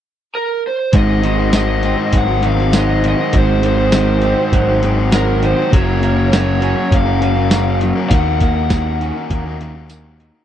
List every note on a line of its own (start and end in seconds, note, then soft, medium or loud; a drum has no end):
0.35 0.62 A#4 medium
0.67 0.94 C5 medium
0.93 1.94 G#1 medium
0.93 2.44 G#2 medium
0.93 1.22 G#3 medium
0.93 1.23 D#4 medium
0.93 1.25 F#4 medium
0.93 1.25 C5 medium
0.93 kick loud
0.93 closed hi-hat medium
0.97 1.51 D#5 medium
1.23 1.54 D#3 medium
1.23 1.53 G#3 medium
1.23 1.40 D#4 medium
1.23 1.38 F#4 medium
1.23 1.38 C5 medium
1.23 closed hi-hat medium
1.38 1.53 D#4 medium
1.38 1.55 F#4 medium
1.38 1.55 C5 medium
1.53 2.44 D#3 medium
1.53 1.83 G#3 medium
1.53 1.84 D#4 medium
1.53 1.85 F#4 medium
1.53 1.85 C5 medium
1.53 2.16 D#5 medium
1.53 snare loud
1.53 closed hi-hat medium
1.53 tambourine medium
1.83 2.29 G#3 medium
1.83 3.34 C4 medium
1.83 1.99 D#4 medium
1.83 1.98 F#4 medium
1.83 1.96 C5 medium
1.83 closed hi-hat soft
1.97 2.27 D#4 soft
1.97 2.27 F#4 medium
1.97 2.25 C5 medium
2.13 3.13 G#1 medium
2.13 2.75 F#3 medium
2.13 kick medium
2.13 closed hi-hat medium
2.18 2.47 F#5 medium
2.26 2.41 D#4 soft
2.26 2.42 F#4 medium
2.26 2.42 C5 medium
2.40 2.71 G#3 medium
2.40 2.58 D#4 medium
2.40 2.58 F#4 medium
2.40 2.55 C5 medium
2.40 closed hi-hat medium
2.45 3.04 D#3 medium
2.45 2.76 F5 medium
2.56 2.72 D#4 medium
2.56 2.73 F#4 medium
2.56 2.74 C5 medium
2.56 snare soft
2.72 4.28 F#3 medium
2.72 3.32 G#3 medium
2.72 3.19 D#4 medium
2.72 3.19 F#4 medium
2.72 3.16 C5 loud
2.72 snare loud
2.72 closed hi-hat medium
2.72 tambourine loud
2.78 3.04 D#5 medium
3.04 3.63 D#3 medium
3.04 closed hi-hat medium
3.08 3.37 D#5 medium
3.18 3.33 D#4 medium
3.18 3.35 F#4 medium
3.18 3.35 C5 medium
3.33 4.33 G#1 loud
3.33 4.83 G#2 medium
3.33 3.61 G#3 medium
3.33 3.63 D#4 medium
3.33 3.65 F#4 medium
3.33 3.65 C5 medium
3.33 kick loud
3.33 closed hi-hat medium
3.38 3.63 C5 medium
3.62 3.93 D#3 medium
3.62 3.92 G#3 medium
3.62 3.80 D#4 medium
3.62 3.80 F#4 medium
3.62 3.77 C5 medium
3.62 4.80 C5 medium
3.62 closed hi-hat medium
3.78 3.93 D#4 medium
3.78 3.94 F#4 medium
3.78 3.94 C5 medium
3.92 4.83 D#3 medium
3.92 4.23 G#3 medium
3.92 4.24 D#4 medium
3.92 4.25 F#4 medium
3.92 4.25 C5 medium
3.92 snare loud
3.92 closed hi-hat medium
3.92 tambourine loud
4.22 4.68 G#3 medium
4.22 5.74 C4 medium
4.22 4.40 D#4 medium
4.22 4.39 F#4 medium
4.22 closed hi-hat soft
4.26 4.37 C5 medium
4.38 4.69 D#4 soft
4.38 4.69 F#4 medium
4.38 4.67 C5 medium
4.52 5.53 G#1 medium
4.52 5.13 F#3 medium
4.52 kick medium
4.52 closed hi-hat medium
4.69 4.83 D#4 soft
4.69 4.85 F#4 medium
4.69 4.85 C5 medium
4.83 5.42 D#3 medium
4.83 5.10 G#3 medium
4.83 4.99 D#4 medium
4.83 4.98 F#4 medium
4.83 4.96 C5 medium
4.83 closed hi-hat medium
4.97 5.12 D#4 soft
4.97 5.14 F#4 medium
4.97 5.14 C5 medium
5.12 5.73 F#3 medium
5.12 5.70 G#3 medium
5.12 5.58 D#4 medium
5.12 5.57 F#4 medium
5.12 5.41 A#4 medium
5.12 5.55 C5 loud
5.12 snare loud
5.12 closed hi-hat medium
5.12 tambourine loud
5.43 5.73 D#3 medium
5.43 5.74 C5 medium
5.43 closed hi-hat medium
5.56 5.72 D#4 medium
5.56 5.73 F#4 medium
5.56 5.70 C5 medium
5.71 6.73 F#1 medium
5.71 6.30 F#3 medium
5.71 6.33 F#3 medium
5.71 5.99 A#3 medium
5.71 6.00 C#4 medium
5.71 6.01 F#4 medium
5.71 6.02 A#4 loud
5.71 6.29 C#5 medium
5.71 kick loud
5.71 closed hi-hat medium
6.00 6.30 A#3 medium
6.00 6.19 C#4 medium
6.00 6.18 F#4 medium
6.00 6.16 A#4 medium
6.00 closed hi-hat medium
6.04 6.95 A#3 medium
6.16 6.31 C#4 medium
6.16 6.31 F#4 medium
6.16 6.32 A#4 medium
6.30 7.50 F#3 medium
6.30 7.23 F#3 medium
6.30 6.59 A#3 medium
6.30 6.60 C#4 medium
6.30 6.61 F#4 medium
6.30 6.62 A#4 medium
6.30 snare loud
6.30 closed hi-hat medium
6.30 tambourine medium
6.35 6.95 C#5 medium
6.59 7.19 A#3 medium
6.59 6.78 C#4 medium
6.59 6.77 F#4 medium
6.59 6.75 A#4 medium
6.59 closed hi-hat medium
6.64 8.16 C#4 medium
6.75 7.08 C#4 medium
6.75 7.07 F#4 medium
6.75 7.05 A#4 medium
6.91 7.91 F#1 medium
6.91 7.54 A#3 medium
6.91 7.79 F5 medium
6.91 kick medium
6.91 closed hi-hat medium
7.05 7.20 C#4 medium
7.05 7.22 F#4 medium
7.05 7.21 A#4 medium
7.19 7.50 A#3 medium
7.19 7.36 C#4 medium
7.19 7.35 F#4 medium
7.19 7.33 A#4 medium
7.19 closed hi-hat medium
7.23 7.83 F#3 medium
7.34 7.51 C#4 soft
7.34 7.51 F#4 medium
7.34 7.52 A#4 medium
7.50 8.09 F#3 medium
7.50 8.10 A#3 medium
7.50 8.42 A#3 medium
7.50 7.98 C#4 medium
7.50 7.97 F#4 medium
7.50 7.95 A#4 medium
7.50 snare loud
7.50 closed hi-hat medium
7.50 tambourine loud
7.81 8.13 F#3 medium
7.81 closed hi-hat medium
7.96 8.10 C#4 soft
7.96 8.10 F#4 medium
7.96 8.11 A#4 medium
8.09 9.10 D#2 loud
8.09 8.69 D#3 medium
8.09 8.72 D#3 medium
8.09 8.40 A#3 medium
8.09 8.40 D#4 medium
8.09 8.41 F#4 loud
8.09 8.42 A#4 medium
8.09 9.85 F#5 medium
8.09 kick loud
8.09 closed hi-hat medium
8.40 8.70 A#3 medium
8.40 9.30 A#3 medium
8.40 8.57 D#4 medium
8.40 8.56 F#4 medium
8.40 8.55 A#4 medium
8.40 kick medium
8.40 closed hi-hat medium
8.56 8.71 D#4 medium
8.56 8.72 F#4 medium
8.56 8.73 A#4 medium
8.70 9.30 D#3 medium
8.70 9.59 D#3 medium
8.70 8.99 A#3 medium
8.70 9.00 D#4 medium
8.70 9.00 F#4 medium
8.70 9.02 A#4 medium
8.70 kick medium
8.70 snare loud
8.70 closed hi-hat medium
8.70 tambourine loud
9.00 9.45 A#3 medium
9.00 10.45 C#4 medium
9.00 9.16 D#4 medium
9.00 9.15 F#4 medium
9.00 9.13 A#4 medium
9.00 closed hi-hat medium
9.15 9.47 D#4 medium
9.15 9.46 F#4 soft
9.15 9.44 A#4 medium
9.30 10.30 D#2 medium
9.30 9.89 A#3 medium
9.30 kick medium
9.30 closed hi-hat medium
9.45 9.60 D#4 medium
9.45 9.61 F#4 medium
9.45 9.62 A#4 medium
9.60 10.20 D#3 medium
9.60 9.89 A#3 medium
9.60 9.76 D#4 medium
9.60 9.74 F#4 medium
9.60 9.74 A#4 medium
9.60 closed hi-hat medium
9.75 9.90 D#4 soft
9.75 9.91 F#4 medium
9.75 9.92 A#4 medium
9.89 10.45 D#3 medium
9.89 10.45 A#3 medium
9.89 10.36 D#4 medium
9.89 10.35 F#4 medium
9.89 10.33 A#4 medium
9.89 closed hi-hat medium
9.89 tambourine loud
10.20 10.45 D#3 medium
10.20 closed hi-hat medium
10.34 10.45 D#4 soft
10.34 10.45 F#4 medium
10.34 10.45 A#4 medium